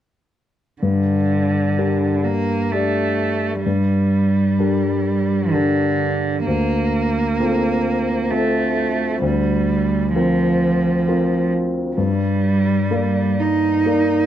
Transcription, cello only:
0, 0, Header, 1, 2, 480
1, 0, Start_track
1, 0, Key_signature, -2, "minor"
1, 0, Tempo, 938967
1, 423, Time_signature, 3, 2, 24, 8
1, 3300, Tempo, 924499
1, 7353, End_track
2, 0, Start_track
2, 0, Title_t, "Cello"
2, 0, Program_c, 0, 42
2, 420, Note_on_c, 0, 50, 37
2, 1148, Note_on_c, 0, 58, 41
2, 1155, Note_off_c, 0, 50, 0
2, 1391, Note_on_c, 0, 57, 47
2, 1398, Note_off_c, 0, 58, 0
2, 1856, Note_off_c, 0, 57, 0
2, 1860, Note_on_c, 0, 55, 44
2, 2817, Note_on_c, 0, 50, 44
2, 2825, Note_off_c, 0, 55, 0
2, 3300, Note_off_c, 0, 50, 0
2, 3303, Note_on_c, 0, 58, 53
2, 4262, Note_on_c, 0, 57, 48
2, 4270, Note_off_c, 0, 58, 0
2, 4737, Note_off_c, 0, 57, 0
2, 4740, Note_on_c, 0, 55, 49
2, 5207, Note_off_c, 0, 55, 0
2, 5217, Note_on_c, 0, 53, 45
2, 5916, Note_off_c, 0, 53, 0
2, 6161, Note_on_c, 0, 55, 54
2, 6903, Note_on_c, 0, 63, 53
2, 6910, Note_off_c, 0, 55, 0
2, 7353, Note_off_c, 0, 63, 0
2, 7353, End_track
0, 0, End_of_file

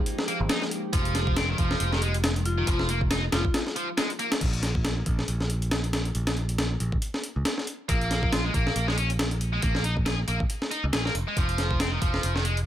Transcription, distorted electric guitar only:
0, 0, Header, 1, 2, 480
1, 0, Start_track
1, 0, Tempo, 434783
1, 1031, Time_signature, 4, 2, 24, 8
1, 13978, End_track
2, 0, Start_track
2, 0, Title_t, "Distorted electric guitar"
2, 0, Program_c, 0, 30
2, 310, Note_on_c, 0, 58, 77
2, 411, Note_off_c, 0, 58, 0
2, 548, Note_on_c, 0, 63, 87
2, 678, Note_off_c, 0, 63, 0
2, 1033, Note_on_c, 0, 53, 86
2, 1502, Note_off_c, 0, 53, 0
2, 1515, Note_on_c, 0, 60, 81
2, 1635, Note_off_c, 0, 60, 0
2, 1647, Note_on_c, 0, 51, 104
2, 1741, Note_off_c, 0, 51, 0
2, 1752, Note_on_c, 0, 53, 79
2, 2114, Note_off_c, 0, 53, 0
2, 2129, Note_on_c, 0, 51, 78
2, 2222, Note_off_c, 0, 51, 0
2, 2232, Note_on_c, 0, 56, 80
2, 2360, Note_off_c, 0, 56, 0
2, 2847, Note_on_c, 0, 51, 81
2, 2924, Note_off_c, 0, 51, 0
2, 2954, Note_on_c, 0, 53, 82
2, 3182, Note_off_c, 0, 53, 0
2, 3197, Note_on_c, 0, 58, 80
2, 3294, Note_off_c, 0, 58, 0
2, 3434, Note_on_c, 0, 63, 85
2, 3561, Note_off_c, 0, 63, 0
2, 3675, Note_on_c, 0, 53, 76
2, 3773, Note_off_c, 0, 53, 0
2, 4154, Note_on_c, 0, 53, 79
2, 4275, Note_off_c, 0, 53, 0
2, 4391, Note_on_c, 0, 56, 100
2, 4513, Note_off_c, 0, 56, 0
2, 4631, Note_on_c, 0, 58, 81
2, 4731, Note_off_c, 0, 58, 0
2, 8712, Note_on_c, 0, 58, 78
2, 9181, Note_off_c, 0, 58, 0
2, 9192, Note_on_c, 0, 65, 75
2, 9314, Note_off_c, 0, 65, 0
2, 9327, Note_on_c, 0, 56, 97
2, 9420, Note_off_c, 0, 56, 0
2, 9434, Note_on_c, 0, 58, 74
2, 9795, Note_off_c, 0, 58, 0
2, 9809, Note_on_c, 0, 56, 79
2, 9902, Note_off_c, 0, 56, 0
2, 9906, Note_on_c, 0, 61, 74
2, 10038, Note_off_c, 0, 61, 0
2, 10525, Note_on_c, 0, 56, 75
2, 10603, Note_off_c, 0, 56, 0
2, 10631, Note_on_c, 0, 58, 79
2, 10860, Note_off_c, 0, 58, 0
2, 10868, Note_on_c, 0, 63, 77
2, 10970, Note_off_c, 0, 63, 0
2, 11108, Note_on_c, 0, 68, 76
2, 11238, Note_off_c, 0, 68, 0
2, 11351, Note_on_c, 0, 58, 75
2, 11451, Note_off_c, 0, 58, 0
2, 11830, Note_on_c, 0, 63, 77
2, 11960, Note_off_c, 0, 63, 0
2, 12071, Note_on_c, 0, 68, 74
2, 12171, Note_off_c, 0, 68, 0
2, 12202, Note_on_c, 0, 58, 67
2, 12281, Note_off_c, 0, 58, 0
2, 12447, Note_on_c, 0, 56, 74
2, 12546, Note_off_c, 0, 56, 0
2, 12551, Note_on_c, 0, 53, 78
2, 13021, Note_off_c, 0, 53, 0
2, 13029, Note_on_c, 0, 60, 76
2, 13152, Note_off_c, 0, 60, 0
2, 13160, Note_on_c, 0, 51, 100
2, 13257, Note_off_c, 0, 51, 0
2, 13267, Note_on_c, 0, 53, 72
2, 13631, Note_off_c, 0, 53, 0
2, 13645, Note_on_c, 0, 51, 74
2, 13740, Note_off_c, 0, 51, 0
2, 13750, Note_on_c, 0, 56, 74
2, 13879, Note_off_c, 0, 56, 0
2, 13978, End_track
0, 0, End_of_file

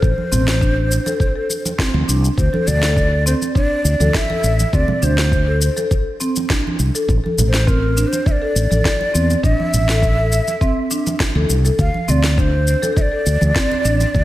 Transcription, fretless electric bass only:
0, 0, Header, 1, 2, 480
1, 0, Start_track
1, 0, Tempo, 588235
1, 22, Time_signature, 4, 2, 24, 8
1, 11621, End_track
2, 0, Start_track
2, 0, Title_t, "Fretless electric bass"
2, 0, Program_c, 0, 35
2, 18, Note_on_c, 0, 33, 93
2, 100, Note_off_c, 0, 33, 0
2, 262, Note_on_c, 0, 33, 87
2, 794, Note_off_c, 0, 33, 0
2, 1583, Note_on_c, 0, 38, 102
2, 1658, Note_off_c, 0, 38, 0
2, 1702, Note_on_c, 0, 36, 89
2, 1859, Note_off_c, 0, 36, 0
2, 1938, Note_on_c, 0, 38, 90
2, 2020, Note_off_c, 0, 38, 0
2, 2183, Note_on_c, 0, 38, 91
2, 2715, Note_off_c, 0, 38, 0
2, 3138, Note_on_c, 0, 38, 80
2, 3220, Note_off_c, 0, 38, 0
2, 3264, Note_on_c, 0, 38, 88
2, 3339, Note_off_c, 0, 38, 0
2, 3619, Note_on_c, 0, 33, 75
2, 3777, Note_off_c, 0, 33, 0
2, 3862, Note_on_c, 0, 38, 97
2, 3942, Note_off_c, 0, 38, 0
2, 4101, Note_on_c, 0, 38, 87
2, 4634, Note_off_c, 0, 38, 0
2, 5543, Note_on_c, 0, 36, 74
2, 5623, Note_off_c, 0, 36, 0
2, 5782, Note_on_c, 0, 33, 98
2, 5862, Note_off_c, 0, 33, 0
2, 6022, Note_on_c, 0, 33, 91
2, 6555, Note_off_c, 0, 33, 0
2, 6982, Note_on_c, 0, 33, 77
2, 7062, Note_off_c, 0, 33, 0
2, 7109, Note_on_c, 0, 33, 89
2, 7181, Note_off_c, 0, 33, 0
2, 7464, Note_on_c, 0, 40, 74
2, 7620, Note_off_c, 0, 40, 0
2, 7699, Note_on_c, 0, 33, 93
2, 7780, Note_off_c, 0, 33, 0
2, 7944, Note_on_c, 0, 33, 93
2, 8475, Note_off_c, 0, 33, 0
2, 9264, Note_on_c, 0, 38, 94
2, 9338, Note_off_c, 0, 38, 0
2, 9380, Note_on_c, 0, 36, 84
2, 9538, Note_off_c, 0, 36, 0
2, 9617, Note_on_c, 0, 38, 94
2, 9699, Note_off_c, 0, 38, 0
2, 9861, Note_on_c, 0, 38, 82
2, 10394, Note_off_c, 0, 38, 0
2, 10823, Note_on_c, 0, 38, 80
2, 10902, Note_off_c, 0, 38, 0
2, 10946, Note_on_c, 0, 38, 89
2, 11020, Note_off_c, 0, 38, 0
2, 11300, Note_on_c, 0, 33, 69
2, 11458, Note_off_c, 0, 33, 0
2, 11543, Note_on_c, 0, 38, 95
2, 11621, Note_off_c, 0, 38, 0
2, 11621, End_track
0, 0, End_of_file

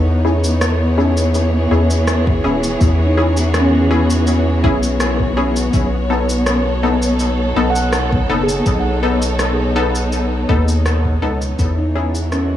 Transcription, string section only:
0, 0, Header, 1, 2, 480
1, 0, Start_track
1, 0, Tempo, 731707
1, 1842, Time_signature, 4, 2, 24, 8
1, 8245, End_track
2, 0, Start_track
2, 0, Title_t, "String section"
2, 0, Program_c, 0, 48
2, 0, Note_on_c, 0, 52, 84
2, 0, Note_on_c, 0, 59, 84
2, 0, Note_on_c, 0, 63, 83
2, 0, Note_on_c, 0, 73, 73
2, 541, Note_on_c, 0, 68, 76
2, 990, Note_on_c, 0, 66, 76
2, 1463, Note_off_c, 0, 63, 0
2, 3760, Note_off_c, 0, 52, 0
2, 3760, Note_on_c, 0, 47, 81
2, 3761, Note_off_c, 0, 68, 0
2, 4190, Note_on_c, 0, 69, 84
2, 4625, Note_on_c, 0, 63, 77
2, 5303, Note_off_c, 0, 66, 0
2, 7600, Note_on_c, 0, 52, 78
2, 7601, Note_off_c, 0, 47, 0
2, 7601, Note_off_c, 0, 69, 0
2, 8050, Note_on_c, 0, 66, 89
2, 8245, Note_off_c, 0, 52, 0
2, 8245, Note_off_c, 0, 59, 0
2, 8245, Note_off_c, 0, 63, 0
2, 8245, Note_off_c, 0, 66, 0
2, 8245, Note_off_c, 0, 73, 0
2, 8245, End_track
0, 0, End_of_file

